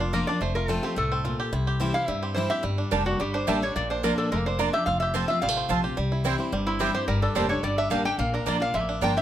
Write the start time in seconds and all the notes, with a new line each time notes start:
Already playing: F1 F2 A#3
0.00 D4 F4
0.13 F3 A#3 D4 F4 A#4
0.27 D4 F4 D5
0.41 F1 F2 A3 C5
0.55 F4 A#4
0.68 F3 A3 C4 F4 A4
0.82 C4 F4 G4
0.96 C2 A2 A3 A4
1.12 C4
1.25 A#2 F4
1.40 G4
1.52 C2 C3 E4
1.67 G4
1.80 E3 G3 C4 E4
1.94 C4 E4 F5
2.07 G2 G3 E5
2.22 C4 G4
2.35 E3 G3 C4 E4 C5
2.50 C4 E4 G4 E5
2.63 G1 G2 G3
2.78 D4
2.91 F1 G3 A#3 D4 G4 A4 D5 A5
3.06 D4 F#4
3.20 G1 D3 G3 G4
3.34 D4 C5
3.47 A1 G3 A#3 D4 G4 A4 D5 E5 A5
3.62 D4 A4 C#5
3.76 A#1 A#2 A#3 D5
3.90 D4 C5
4.03 F3 A#3 D4 F4 A#4 D5 A#5
4.18 D4 A4
4.32 F1 F2 G#3 A#4
4.38 A#3
4.46 D4 C5
4.59 F3 A#3 D4 F4 D5 A#5
4.73 D4 F4 G4 E5
4.86 F1 F2 F4 F5
5.00 G4 E5
5.14 F3 A3 C4 F4 C5 A5
5.28 C4 F4 E5
5.42 A1 C3 G3 F5
5.49 A3
5.57 C4
5.69 A#1 F3 A3 C4 F4 C5 A5
5.83 C4 F4 G4
5.97 C2 C3 G3
6.12 E4
6.24 E3 G3 C4 E4 C5 G5
6.38 C4 E4
6.52 G1 G2 G3
6.67 C4 E4
6.79 E3 G3 C4 E4 G4 C5 G5
6.94 C4 E4 G4 C5
7.08 G1 G2 G3 A#4
7.22 D4 A4
7.35 F1 G3 A#3 D4 G4 A4 C5 D5 A5
7.49 D4 A4 C#5
7.63 G1 D3 G3 D5
7.78 D4 E5
7.90 A1 G3 A#3 D4 G4 A4 D5 F5 A5
8.05 D4 G4 A4 G5
8.18 A#1 A#2 A#3 F5
8.34 D4 A#4
8.46 A#1 F3 A#3 D4 F4 D5 A#5
8.60 D4 F4 F5
8.74 A1 F2 G#3 E5
8.80 A#3
8.89 D4
9.01 G1 F3 A#3 D4 F4 D5 G5 A#5
9.17 D4 F4 G4 E5